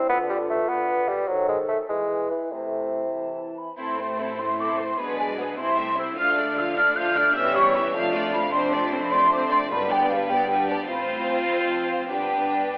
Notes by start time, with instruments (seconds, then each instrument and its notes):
Already playing: clarinet E4
0.09 french horn section D3, bassoon B3, clarinet F4, flute section B4
0.29 bassoon G3
0.50 bassoon A3
0.69 french horn section D3, bassoon B3
1.09 bassoon G3
1.28 french horn section D#3, bassoon F#3, clarinet A4, flute section C5
1.48 bassoon G#3
1.68 bassoon A3
1.89 french horn section E3, bassoon G#3, clarinet E4, flute section B4
2.31 bassoon E3
2.52 bassoon C3, french horn section A3, clarinet E4, flute section C5
3.15 french horn section E3, flute section A5
3.57 flute section B5
3.78 double bass section A1, cello section A2, french horn section A3 E4, viola section C4, violin section E4 A4, flute section C6
3.98 viola section A3, violin section C4 C5
4.19 viola section C4, violin section E4 A4, flute section B5
4.38 french horn section A3 E4, viola section A3, violin section C4 C5, flute section C6
4.59 viola section C4, violin section E4 A4, flute section D6
4.78 viola section A3, violin section C4 C5, flute section C6
4.98 double bass section B1, cello section B2, french horn section G#3 D4, viola section B3, violin section G#4 B4, flute section B5
5.18 viola section G#3, violin section B4 D5, flute section G#5
5.38 viola section B3, violin section G#4 B4, flute section F#5
5.57 double bass section C2, cello section C3, french horn section A3 E4, viola section C4, violin section E4 C5, flute section C6
5.77 viola section A3, violin section C4 E5
5.97 viola section C4, violin section E4 C5, flute section E6
6.17 double bass section D2, cello section D3, viola section F3, french horn section A3 D4, violin section F4 F5, flute section F6
6.37 viola section A3, violin section D4 D5
6.57 viola section F3, violin section F4 F5, flute section E6
6.76 viola section A3, french horn section A3 D4, violin section D4 D5, flute section F6
6.95 viola section F3, violin section F4 F5, flute section G6
7.15 viola section A3, violin section D4 D5, flute section F6
7.35 double bass section E1, cello section E2, viola section E3, french horn section G3 C#4, violin section G4 E5, flute section E6
7.55 viola section G3, violin section E4 C#5, flute section C#6
7.74 viola section E3, violin section G4 E5, flute section B5
7.94 double bass section F1, cello section F2, viola section F3, french horn section A3 D4, violin section D4 F5, flute section A5
8.13 viola section A3, violin section F4 D5
8.33 viola section F3, violin section D4 F5, flute section B5
8.52 french horn section A3 D4, viola section C4, violin section D4 C5, flute section C6
8.72 viola section A3, violin section C4 D5
8.92 viola section C4, violin section D4 C5, flute section B5
9.12 viola section A3, french horn section A3 D4, violin section C4 D5, flute section C6
9.31 viola section C4, violin section D4 C5, flute section D6
9.51 viola section A3, violin section C4 D5, flute section C6
9.70 double bass section G1, cello section G2, timpani G2, viola section G3, french horn section B3 D4, violin section D4 B4, flute section B5
9.90 viola section B3, violin section G4 D5, flute section G5
10.09 viola section G3, violin section D4 B4, flute section F5
10.29 viola section B3, french horn section B3 D4, violin section G4 D5, flute section G5
10.49 viola section G3, violin section D4 B4
10.68 viola section B3, violin section G4 D5, flute section A5
10.89 double bass section A1, cello section A2, viola section C4, french horn section C4 F4, violin section F4 C5, flute section B5
11.29 flute section A5
11.49 double bass section F1, cello section F2, flute section B5
11.71 flute section A5
11.91 flute section F5
12.11 double bass section G1, cello section G2, french horn section B3 D4, viola section D4, violin section G4 B4, flute section G5
12.74 violin section C5